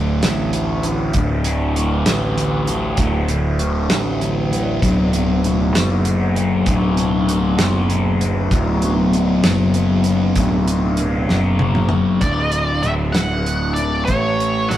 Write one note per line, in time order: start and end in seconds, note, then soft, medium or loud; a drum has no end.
0.00 0.19 D1 medium
0.00 0.23 D2 medium
0.00 4.81 D2 medium
0.00 0.22 A2 medium
0.00 0.21 D3 medium
0.23 1.11 A1 medium
0.23 0.51 D2 medium
0.23 0.52 A2 medium
0.23 0.53 D3 medium
0.23 snare loud
0.23 closed hi-hat medium
0.53 0.84 D2 medium
0.53 0.83 A2 medium
0.53 0.83 D3 medium
0.53 closed hi-hat medium
0.83 1.13 D2 medium
0.83 1.14 A2 medium
0.83 1.14 D3 medium
0.83 closed hi-hat medium
1.13 2.03 D1 medium
1.13 1.45 D2 medium
1.13 1.45 A2 medium
1.13 1.45 D3 medium
1.13 kick loud
1.13 closed hi-hat medium
1.44 1.74 D2 medium
1.44 1.75 A2 medium
1.44 1.75 D3 medium
1.44 closed hi-hat medium
1.75 2.06 D2 medium
1.75 2.06 A2 medium
1.75 2.05 D3 medium
1.75 closed hi-hat medium
2.06 2.95 A1 medium
2.06 2.34 D2 medium
2.06 2.35 A2 medium
2.06 2.36 D3 medium
2.06 snare loud
2.06 closed hi-hat medium
2.35 2.67 D2 medium
2.35 2.67 A2 medium
2.35 2.66 D3 medium
2.35 closed hi-hat medium
2.67 2.95 D2 medium
2.67 2.96 A2 medium
2.67 2.97 D3 medium
2.67 closed hi-hat medium
2.97 3.86 D1 medium
2.97 3.28 D2 medium
2.97 3.28 A2 medium
2.97 3.28 D3 medium
2.97 kick medium
2.97 closed hi-hat medium
3.28 3.58 D2 medium
3.28 3.59 A2 medium
3.28 3.59 D3 medium
3.28 closed hi-hat medium
3.59 3.89 D2 medium
3.59 3.89 A2 medium
3.59 3.88 D3 medium
3.59 closed hi-hat medium
3.89 4.78 A1 medium
3.89 4.19 D2 medium
3.89 4.20 A2 medium
3.89 4.20 D3 medium
3.89 snare loud
3.89 closed hi-hat medium
4.20 4.51 D2 medium
4.20 4.50 A2 medium
4.20 4.50 D3 medium
4.20 closed hi-hat medium
4.51 4.80 D2 medium
4.51 4.81 A2 medium
4.51 4.82 D3 medium
4.51 closed hi-hat medium
4.81 5.70 D1 medium
4.81 12.28 D2 medium
4.81 5.12 B2 medium
4.81 5.13 F#3 medium
4.81 5.12 B3 medium
4.81 kick loud
4.81 closed hi-hat medium
5.13 5.43 B2 medium
5.13 5.43 F#3 medium
5.13 5.44 B3 medium
5.13 closed hi-hat medium
5.44 5.75 B2 medium
5.44 5.75 F#3 medium
5.44 5.74 B3 medium
5.44 closed hi-hat medium
5.74 6.62 F#1 medium
5.74 6.04 B2 medium
5.74 6.05 F#3 medium
5.74 6.05 B3 medium
5.74 snare loud
5.74 closed hi-hat medium
6.05 6.35 B2 medium
6.05 6.34 F#3 medium
6.05 6.34 B3 medium
6.05 closed hi-hat medium
6.36 6.65 B2 medium
6.36 6.65 F#3 medium
6.36 6.66 B3 medium
6.36 closed hi-hat medium
6.66 7.55 D1 medium
6.66 6.97 B2 medium
6.66 6.96 F#3 medium
6.66 6.96 B3 loud
6.66 kick loud
6.66 closed hi-hat medium
6.97 7.26 B2 medium
6.97 7.27 F#3 medium
6.97 7.28 B3 medium
6.97 closed hi-hat medium
7.28 7.59 B2 medium
7.28 7.59 F#3 medium
7.28 7.58 B3 medium
7.28 closed hi-hat medium
7.59 8.47 F#1 medium
7.59 7.90 B2 medium
7.59 7.90 F#3 medium
7.59 7.90 B3 medium
7.59 snare loud
7.59 closed hi-hat medium
7.90 8.21 B2 medium
7.90 8.21 F#3 medium
7.90 8.21 B3 medium
7.90 closed hi-hat medium
8.21 8.50 B2 medium
8.21 8.51 F#3 medium
8.21 8.52 B3 medium
8.21 closed hi-hat medium
8.51 9.40 D1 medium
8.51 8.82 B2 medium
8.51 8.82 F#3 medium
8.51 8.81 B3 medium
8.51 kick loud
8.51 closed hi-hat medium
8.82 9.13 B2 medium
8.82 9.13 F#3 medium
8.82 9.13 B3 medium
8.82 closed hi-hat medium
9.13 9.44 B2 medium
9.13 9.44 F#3 medium
9.13 9.43 B3 medium
9.13 closed hi-hat medium
9.44 10.32 F#1 medium
9.44 9.74 B2 medium
9.44 9.75 F#3 medium
9.44 9.75 B3 medium
9.44 snare loud
9.44 closed hi-hat medium
9.74 10.06 B2 medium
9.74 10.06 F#3 medium
9.74 10.05 B3 medium
9.74 closed hi-hat medium
10.04 10.35 B2 medium
10.04 10.36 F#3 medium
10.04 10.37 B3 medium
10.04 closed hi-hat medium
10.36 11.25 D1 medium
10.36 10.67 B2 medium
10.36 10.67 F#3 medium
10.36 10.66 B3 medium
10.36 kick loud
10.36 closed hi-hat medium
10.67 10.98 B2 medium
10.67 10.99 F#3 medium
10.67 10.98 B3 medium
10.67 closed hi-hat medium
10.97 11.29 B2 medium
10.97 11.29 F#3 medium
10.97 11.29 B3 medium
10.97 closed hi-hat medium
11.29 12.19 F#1 medium
11.29 11.58 B2 medium
11.29 11.59 F#3 medium
11.29 11.59 B3 medium
11.29 snare medium
11.59 11.91 B2 medium
11.59 11.91 F#3 medium
11.59 11.89 B3 medium
11.59 high tom medium
11.75 mid tom medium
11.89 12.22 B2 medium
11.89 12.22 F#3 medium
11.89 12.22 B3 medium
11.89 mid tom medium
12.21 12.80 D1 medium
12.21 12.83 D2 medium
12.21 12.84 A2 medium
12.21 12.86 D3 medium
12.21 12.86 D5 medium
12.21 kick medium
12.21 closed hi-hat medium
12.52 closed hi-hat medium
12.83 13.13 D1 medium
12.83 13.18 D2 medium
12.83 13.16 A2 medium
12.83 12.91 E5 medium
12.83 closed hi-hat medium
12.87 13.14 D3 medium
13.12 14.05 D1 medium
13.12 13.76 D3 medium
13.12 13.72 F#5 medium
13.12 snare loud
13.12 closed hi-hat medium
13.17 14.08 D2 medium
13.17 13.79 A2 medium
13.46 closed hi-hat medium
13.74 14.07 D3 medium
13.74 14.05 D5 medium
13.74 closed hi-hat medium
13.80 14.07 A2 medium
14.05 14.67 A1 medium
14.05 14.69 A2 medium
14.05 14.71 C#5 medium
14.05 kick loud
14.05 closed hi-hat medium
14.10 14.70 E3 medium
14.10 14.72 A3 medium
14.40 closed hi-hat medium
14.69 14.78 A1 medium
14.69 14.78 A2 medium
14.69 14.78 E3 medium
14.69 14.78 F#5 medium
14.69 closed hi-hat medium
14.73 14.78 A3 medium